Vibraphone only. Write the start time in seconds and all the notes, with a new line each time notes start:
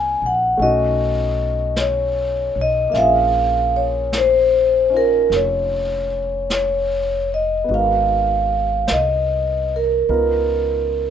Already playing: G#5
0.26 F#5
0.62 D#5
1.80 C#5
2.61 D#5
2.92 E5
2.96 F5
3.76 C#5
4.18 C5
4.97 A#4
5.36 C#5
6.54 C#5
7.34 D#5
7.74 F5
8.92 D#5
9.76 A#4